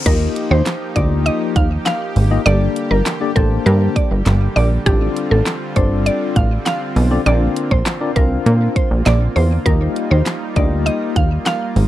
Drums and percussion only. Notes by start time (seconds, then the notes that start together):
0.06 kick, closed hi-hat, crash
0.36 closed hi-hat
0.66 snare, clap, closed hi-hat
0.96 kick, closed hi-hat
1.26 closed hi-hat
1.56 kick, closed hi-hat
1.86 snare, clap, closed hi-hat
2.16 open hi-hat
2.46 closed hi-hat
2.76 closed hi-hat
3.06 snare, clap, closed hi-hat
3.36 kick, closed hi-hat
3.67 closed hi-hat
3.96 kick, closed hi-hat
4.26 snare, clap, closed hi-hat
4.56 open hi-hat
4.86 kick, closed hi-hat
5.17 closed hi-hat
5.46 snare, clap, closed hi-hat
5.76 kick, closed hi-hat
6.06 closed hi-hat
6.36 kick, closed hi-hat
6.66 snare, clap, closed hi-hat
6.96 open hi-hat
7.26 closed hi-hat
7.56 closed hi-hat
7.71 kick
7.86 snare, clap, closed hi-hat
8.16 kick, closed hi-hat
8.46 closed hi-hat
8.76 kick, closed hi-hat
9.06 snare, clap, closed hi-hat
9.36 open hi-hat
9.66 kick, closed hi-hat
9.96 closed hi-hat
10.26 snare, clap, closed hi-hat
10.56 kick, closed hi-hat
10.87 closed hi-hat
11.16 kick, closed hi-hat
11.46 snare, clap, closed hi-hat
11.76 open hi-hat